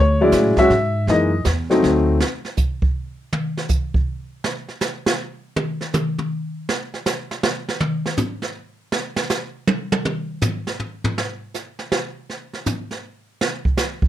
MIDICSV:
0, 0, Header, 1, 5, 480
1, 0, Start_track
1, 0, Tempo, 373832
1, 1389, Time_signature, 3, 2, 24, 8
1, 18080, End_track
2, 0, Start_track
2, 0, Title_t, "Upright piano"
2, 0, Program_c, 0, 0
2, 0, Note_on_c, 0, 73, 92
2, 266, Note_on_c, 0, 54, 78
2, 272, Note_on_c, 0, 49, 68
2, 273, Note_on_c, 0, 56, 69
2, 275, Note_off_c, 0, 73, 0
2, 279, Note_on_c, 0, 74, 82
2, 282, Note_on_c, 0, 64, 83
2, 713, Note_off_c, 0, 54, 0
2, 716, Note_off_c, 0, 49, 0
2, 717, Note_off_c, 0, 56, 0
2, 718, Note_off_c, 0, 74, 0
2, 721, Note_off_c, 0, 64, 0
2, 747, Note_on_c, 0, 54, 73
2, 750, Note_on_c, 0, 56, 73
2, 751, Note_on_c, 0, 76, 107
2, 754, Note_on_c, 0, 61, 73
2, 755, Note_on_c, 0, 66, 87
2, 894, Note_off_c, 0, 54, 0
2, 896, Note_off_c, 0, 56, 0
2, 898, Note_off_c, 0, 61, 0
2, 898, Note_off_c, 0, 66, 0
2, 1348, Note_off_c, 0, 76, 0
2, 1397, Note_on_c, 0, 52, 57
2, 1401, Note_on_c, 0, 56, 57
2, 1403, Note_on_c, 0, 58, 56
2, 1410, Note_on_c, 0, 63, 68
2, 1412, Note_on_c, 0, 75, 92
2, 1675, Note_off_c, 0, 52, 0
2, 1677, Note_off_c, 0, 56, 0
2, 1678, Note_off_c, 0, 58, 0
2, 1682, Note_off_c, 0, 63, 0
2, 1847, Note_off_c, 0, 75, 0
2, 2180, Note_on_c, 0, 54, 69
2, 2189, Note_on_c, 0, 57, 67
2, 2189, Note_on_c, 0, 60, 67
2, 2199, Note_on_c, 0, 63, 77
2, 2794, Note_off_c, 0, 54, 0
2, 2798, Note_off_c, 0, 60, 0
2, 2799, Note_off_c, 0, 57, 0
2, 2803, Note_off_c, 0, 63, 0
2, 18080, End_track
3, 0, Start_track
3, 0, Title_t, "Upright bass"
3, 0, Program_c, 1, 32
3, 0, Note_on_c, 1, 38, 84
3, 402, Note_off_c, 1, 38, 0
3, 410, Note_on_c, 1, 45, 85
3, 711, Note_off_c, 1, 45, 0
3, 895, Note_on_c, 1, 44, 90
3, 1367, Note_off_c, 1, 44, 0
3, 1377, Note_on_c, 1, 42, 88
3, 1848, Note_off_c, 1, 42, 0
3, 1865, Note_on_c, 1, 40, 91
3, 2332, Note_off_c, 1, 40, 0
3, 2344, Note_on_c, 1, 38, 93
3, 2811, Note_off_c, 1, 38, 0
3, 18080, End_track
4, 0, Start_track
4, 0, Title_t, "Muted upright bass strokes"
4, 725, Note_on_c, 9, 29, 43
4, 853, Note_off_c, 9, 29, 0
4, 18080, End_track
5, 0, Start_track
5, 0, Title_t, "Drums"
5, 409, Note_on_c, 9, 44, 68
5, 414, Note_on_c, 9, 38, 63
5, 419, Note_on_c, 9, 36, 20
5, 538, Note_off_c, 9, 44, 0
5, 543, Note_off_c, 9, 38, 0
5, 548, Note_off_c, 9, 36, 0
5, 727, Note_on_c, 9, 38, 46
5, 733, Note_on_c, 9, 36, 67
5, 856, Note_off_c, 9, 38, 0
5, 861, Note_off_c, 9, 36, 0
5, 901, Note_on_c, 9, 36, 29
5, 904, Note_on_c, 9, 38, 47
5, 1030, Note_off_c, 9, 36, 0
5, 1032, Note_off_c, 9, 38, 0
5, 1383, Note_on_c, 9, 36, 18
5, 1386, Note_on_c, 9, 25, 46
5, 1386, Note_on_c, 9, 38, 47
5, 1511, Note_off_c, 9, 36, 0
5, 1514, Note_off_c, 9, 38, 0
5, 1856, Note_on_c, 9, 44, 60
5, 1862, Note_on_c, 9, 38, 67
5, 1865, Note_on_c, 9, 36, 23
5, 1985, Note_off_c, 9, 44, 0
5, 1990, Note_off_c, 9, 38, 0
5, 1993, Note_off_c, 9, 36, 0
5, 2190, Note_on_c, 9, 38, 43
5, 2319, Note_off_c, 9, 38, 0
5, 2349, Note_on_c, 9, 36, 27
5, 2358, Note_on_c, 9, 38, 51
5, 2477, Note_off_c, 9, 36, 0
5, 2486, Note_off_c, 9, 38, 0
5, 2830, Note_on_c, 9, 38, 86
5, 2958, Note_off_c, 9, 38, 0
5, 3142, Note_on_c, 9, 38, 31
5, 3270, Note_off_c, 9, 38, 0
5, 3300, Note_on_c, 9, 44, 55
5, 3309, Note_on_c, 9, 36, 73
5, 3338, Note_off_c, 9, 25, 0
5, 3429, Note_off_c, 9, 44, 0
5, 3437, Note_off_c, 9, 36, 0
5, 3623, Note_on_c, 9, 36, 82
5, 3751, Note_off_c, 9, 36, 0
5, 4270, Note_on_c, 9, 47, 93
5, 4399, Note_off_c, 9, 47, 0
5, 4589, Note_on_c, 9, 38, 47
5, 4718, Note_off_c, 9, 38, 0
5, 4736, Note_on_c, 9, 44, 50
5, 4746, Note_on_c, 9, 36, 74
5, 4865, Note_off_c, 9, 44, 0
5, 4875, Note_off_c, 9, 36, 0
5, 5063, Note_on_c, 9, 36, 75
5, 5192, Note_off_c, 9, 36, 0
5, 5702, Note_on_c, 9, 38, 86
5, 5830, Note_off_c, 9, 38, 0
5, 6015, Note_on_c, 9, 38, 29
5, 6144, Note_off_c, 9, 38, 0
5, 6173, Note_on_c, 9, 44, 52
5, 6178, Note_on_c, 9, 38, 88
5, 6302, Note_off_c, 9, 44, 0
5, 6307, Note_off_c, 9, 38, 0
5, 6501, Note_on_c, 9, 38, 98
5, 6629, Note_off_c, 9, 38, 0
5, 7144, Note_on_c, 9, 47, 89
5, 7272, Note_off_c, 9, 47, 0
5, 7457, Note_on_c, 9, 38, 34
5, 7585, Note_off_c, 9, 38, 0
5, 7621, Note_on_c, 9, 44, 56
5, 7626, Note_on_c, 9, 47, 94
5, 7749, Note_off_c, 9, 44, 0
5, 7754, Note_off_c, 9, 47, 0
5, 7941, Note_on_c, 9, 47, 53
5, 8070, Note_off_c, 9, 47, 0
5, 8588, Note_on_c, 9, 38, 90
5, 8716, Note_off_c, 9, 38, 0
5, 8909, Note_on_c, 9, 38, 33
5, 9037, Note_off_c, 9, 38, 0
5, 9062, Note_on_c, 9, 44, 56
5, 9067, Note_on_c, 9, 38, 97
5, 9191, Note_off_c, 9, 44, 0
5, 9196, Note_off_c, 9, 38, 0
5, 9387, Note_on_c, 9, 38, 49
5, 9515, Note_off_c, 9, 38, 0
5, 9544, Note_on_c, 9, 38, 105
5, 9672, Note_off_c, 9, 38, 0
5, 9868, Note_on_c, 9, 38, 55
5, 9996, Note_off_c, 9, 38, 0
5, 10021, Note_on_c, 9, 47, 93
5, 10149, Note_off_c, 9, 47, 0
5, 10345, Note_on_c, 9, 38, 45
5, 10473, Note_off_c, 9, 38, 0
5, 10493, Note_on_c, 9, 44, 56
5, 10498, Note_on_c, 9, 43, 98
5, 10621, Note_off_c, 9, 44, 0
5, 10626, Note_off_c, 9, 43, 0
5, 10811, Note_on_c, 9, 38, 46
5, 10939, Note_off_c, 9, 38, 0
5, 11454, Note_on_c, 9, 38, 89
5, 11583, Note_off_c, 9, 38, 0
5, 11766, Note_on_c, 9, 38, 84
5, 11895, Note_off_c, 9, 38, 0
5, 11937, Note_on_c, 9, 44, 58
5, 11942, Note_on_c, 9, 38, 101
5, 12065, Note_off_c, 9, 44, 0
5, 12070, Note_off_c, 9, 38, 0
5, 12422, Note_on_c, 9, 48, 100
5, 12550, Note_off_c, 9, 48, 0
5, 12738, Note_on_c, 9, 48, 97
5, 12866, Note_off_c, 9, 48, 0
5, 12907, Note_on_c, 9, 47, 91
5, 13035, Note_off_c, 9, 47, 0
5, 13373, Note_on_c, 9, 44, 59
5, 13379, Note_on_c, 9, 43, 100
5, 13502, Note_off_c, 9, 44, 0
5, 13507, Note_off_c, 9, 43, 0
5, 13699, Note_on_c, 9, 38, 54
5, 13828, Note_off_c, 9, 38, 0
5, 13863, Note_on_c, 9, 43, 56
5, 13991, Note_off_c, 9, 43, 0
5, 14180, Note_on_c, 9, 43, 97
5, 14308, Note_off_c, 9, 43, 0
5, 14353, Note_on_c, 9, 38, 89
5, 14482, Note_off_c, 9, 38, 0
5, 14822, Note_on_c, 9, 44, 50
5, 14827, Note_on_c, 9, 38, 33
5, 14950, Note_off_c, 9, 44, 0
5, 14955, Note_off_c, 9, 38, 0
5, 15136, Note_on_c, 9, 38, 44
5, 15264, Note_off_c, 9, 38, 0
5, 15302, Note_on_c, 9, 38, 99
5, 15430, Note_off_c, 9, 38, 0
5, 15787, Note_on_c, 9, 38, 32
5, 15916, Note_off_c, 9, 38, 0
5, 16094, Note_on_c, 9, 38, 31
5, 16222, Note_off_c, 9, 38, 0
5, 16256, Note_on_c, 9, 44, 56
5, 16261, Note_on_c, 9, 43, 87
5, 16384, Note_off_c, 9, 44, 0
5, 16389, Note_off_c, 9, 43, 0
5, 16574, Note_on_c, 9, 38, 38
5, 16702, Note_off_c, 9, 38, 0
5, 17220, Note_on_c, 9, 38, 93
5, 17348, Note_off_c, 9, 38, 0
5, 17529, Note_on_c, 9, 36, 71
5, 17657, Note_off_c, 9, 36, 0
5, 17682, Note_on_c, 9, 44, 55
5, 17687, Note_on_c, 9, 38, 90
5, 17811, Note_off_c, 9, 44, 0
5, 17816, Note_off_c, 9, 38, 0
5, 18005, Note_on_c, 9, 36, 82
5, 18080, Note_off_c, 9, 36, 0
5, 18080, End_track
0, 0, End_of_file